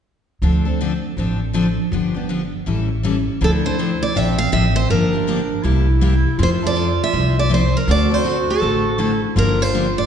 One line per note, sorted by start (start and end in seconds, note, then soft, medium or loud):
0.42 1.02 D2 medium
0.42 0.63 D3 medium
0.42 0.64 F3 medium
0.42 0.64 C4 medium
0.42 0.64 D4 medium
0.42 0.64 A4 medium
0.65 0.79 C4 soft
0.65 0.79 D4 soft
0.65 0.79 A4 medium
0.81 0.91 D3 medium
0.81 0.92 F3 medium
0.81 0.91 C4 medium
0.81 0.92 D4 medium
0.81 0.92 A4 medium
1.17 1.77 A1 medium
1.17 1.39 D3 medium
1.17 1.39 F3 medium
1.17 1.39 C4 medium
1.17 1.39 D4 medium
1.17 1.39 A4 medium
1.53 1.65 D3 medium
1.53 1.65 F3 medium
1.53 1.66 C4 medium
1.53 1.66 D4 medium
1.53 1.66 A4 medium
1.92 2.51 G1 medium
1.92 2.13 D3 medium
1.92 2.14 F3 medium
1.92 2.14 B3 medium
1.92 2.14 D4 medium
1.92 2.13 G4 medium
2.14 2.28 B3 soft
2.14 2.29 D4 soft
2.14 2.28 G4 soft
2.29 2.40 D3 medium
2.29 2.41 F3 medium
2.29 2.41 B3 medium
2.29 2.41 D4 medium
2.29 2.41 G4 medium
2.66 3.26 A1 medium
2.66 2.87 E3 medium
2.66 2.88 G3 medium
2.66 2.88 C#4 medium
2.66 2.88 E4 medium
2.66 2.88 A4 medium
3.03 3.15 E3 medium
3.03 3.15 G3 medium
3.03 3.15 C#4 medium
3.03 3.15 E4 loud
3.03 3.16 A4 medium
3.41 4.01 D2 medium
3.41 3.62 D3 medium
3.41 3.62 F3 medium
3.41 3.62 C4 medium
3.41 3.63 D4 medium
3.41 4.17 E4 medium
3.41 3.63 A4 medium
3.41 3.50 A4 medium
3.64 3.78 C4 soft
3.64 3.78 D4 soft
3.64 3.78 A4 medium
3.64 4.03 C5 medium
3.79 3.90 D3 medium
3.79 3.90 F3 medium
3.79 3.90 C4 medium
3.79 3.90 D4 medium
3.79 3.90 A4 medium
4.03 4.17 D5 medium
4.15 4.47 A#1 medium
4.15 4.37 D3 medium
4.15 4.37 F3 medium
4.15 4.91 C4 medium
4.15 4.37 C4 medium
4.15 4.37 D4 medium
4.15 4.37 A4 medium
4.15 4.38 E5 medium
4.38 4.52 F5 medium
4.52 4.84 A1 medium
4.52 4.64 D3 medium
4.52 4.64 F3 medium
4.52 4.64 C4 medium
4.52 4.64 D4 medium
4.52 4.64 A4 medium
4.52 4.74 E5 medium
4.76 4.89 C5 medium
4.89 5.50 G1 medium
4.89 5.11 D3 medium
4.89 5.12 F3 medium
4.89 5.12 A#3 medium
4.89 5.65 D4 medium
4.89 5.12 D4 medium
4.89 5.12 G4 medium
4.89 5.61 A#4 medium
5.13 5.27 A#3 soft
5.13 5.27 D4 soft
5.13 5.27 G4 medium
5.27 5.39 D3 medium
5.27 5.39 F3 medium
5.27 5.39 A#3 medium
5.27 5.39 D4 medium
5.27 5.39 G4 medium
5.63 6.24 C2 medium
5.63 5.85 C3 medium
5.63 5.86 G3 medium
5.63 5.86 A#3 medium
5.63 6.39 E4 loud
5.63 5.86 E4 medium
5.63 5.86 G4 medium
6.01 6.13 C3 medium
6.01 6.13 G3 medium
6.01 6.13 A#3 medium
6.01 6.13 E4 medium
6.01 6.13 G4 medium
6.38 6.98 F2 medium
6.38 6.60 F3 medium
6.38 6.60 C4 medium
6.38 6.60 E4 medium
6.38 7.63 F4 loud
6.38 6.61 A4 medium
6.43 6.49 C5 medium
6.62 6.75 C4 soft
6.62 6.75 E4 medium
6.62 6.75 A4 medium
6.67 7.03 D5 medium
6.75 6.87 F3 medium
6.75 6.87 C4 medium
6.75 6.87 E4 medium
6.75 6.88 A4 medium
7.04 7.39 E5 medium
7.13 7.73 C2 medium
7.13 7.34 F3 medium
7.13 7.35 C4 medium
7.13 7.35 E4 medium
7.13 7.35 A4 medium
7.39 7.53 D5 medium
7.49 7.61 F3 medium
7.49 7.62 C4 medium
7.49 7.62 E4 medium
7.49 7.62 A4 medium
7.54 7.76 C5 medium
7.77 7.90 A#4 medium
7.87 8.47 D2 medium
7.87 8.09 D3 medium
7.87 8.09 A3 medium
7.87 8.10 C4 medium
7.87 9.00 F#4 loud
7.87 8.10 F#4 medium
7.87 8.09 A4 medium
7.87 8.14 D5 medium
8.10 8.23 C4 soft
8.10 8.24 F#4 medium
8.10 8.24 A4 medium
8.14 8.51 C5 medium
8.24 8.36 D3 medium
8.24 8.36 A3 medium
8.24 8.36 C4 medium
8.24 8.37 F#4 medium
8.24 8.37 A4 medium
8.50 9.20 A4 medium
8.62 9.22 A1 medium
8.62 8.83 D3 medium
8.62 8.83 A3 medium
8.62 8.84 C4 medium
8.62 8.84 F#4 medium
8.62 8.84 A4 medium
8.98 9.10 D3 medium
8.98 9.10 A3 medium
8.98 9.10 C4 medium
8.98 9.37 E4 medium
8.98 9.11 F#4 medium
8.98 9.11 A4 medium
9.35 9.96 G1 medium
9.35 9.58 D3 medium
9.35 9.58 F3 medium
9.35 9.58 A#3 medium
9.35 9.58 D4 medium
9.35 10.06 F4 loud
9.35 9.58 G4 medium
9.35 9.62 A#4 medium
9.59 9.73 A#3 soft
9.59 9.73 D4 soft
9.59 9.73 G4 medium
9.59 9.99 C5 medium
9.74 9.85 D3 medium
9.74 9.86 F3 medium
9.74 9.86 A#3 medium
9.74 9.86 D4 medium
9.74 9.86 G4 medium
9.98 10.06 D5 medium